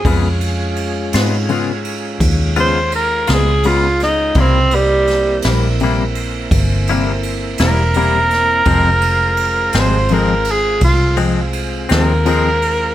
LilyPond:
<<
  \new Staff \with { instrumentName = "Tenor saxophone" } { \time 12/8 \key f \minor \tempo 4. = 56 aes'8 r2. c''8 bes'8 aes'8 f'8 ees'8 | c'8 g4 r2. bes'4.~ | bes'4. c''8 bes'8 aes'8 f'8 r4 bes'4. | }
  \new Staff \with { instrumentName = "Tonewheel organ" } { \time 12/8 \key f \minor <aes des' f'>1. | <des f' b'>8 <bes c' e'>1~ <bes c' e'>4. | <aes c' f'>1. | }
  \new Staff \with { instrumentName = "Clean electric guitar" } { \clef bass \time 12/8 \key f \minor <des aes ces' f'>8 r4 <aes ces' f'>8 <des aes ces' f'>8 r4 <des aes ces' f'>8 r8 <aes ces' f'>8 <des aes ces' f'>8 r8 | <c g bes e'>8 r4 <g bes e'>8 <c g bes e'>8 r4 <c g bes e'>8 r8 <g bes e'>8 <c g bes e'>8 r8 | <f, f aes c'>8 r4 <f aes c'>8 <f, f aes c'>8 r4 <f, f aes c'>8 r8 <f aes c'>8 <f, f aes c'>8 r8 | }
  \new Staff \with { instrumentName = "Fingered electric bass" } { \clef bass \time 12/8 \key f \minor f,4. aes,4. ees,4. des,4. | c,4. bes,,4. g,,4. e,,4. | f,,4. aes,,4. c,4. ees,4. | }
  \new DrumStaff \with { instrumentName = "Drums" } \drummode { \time 12/8 <bd cymr>8 cymr8 cymr8 <cymr sn>8 cymr8 cymr8 <bd cymr>8 cymr8 cymr8 <cymr sn>8 cymr8 <cymr sn>8 | <bd cymr>8 cymr8 <cymr sn>8 <cymr sn>8 cymr8 cymr8 <bd cymr>8 cymr8 cymr8 <cymr sn>8 cymr8 <cymr sn>8 | <bd cymr>8 cymr8 cymr8 <cymr sn>8 cymr8 cymr8 <bd cymr>8 cymr8 cymr8 <cymr sn>8 cymr8 cymr8 | }
>>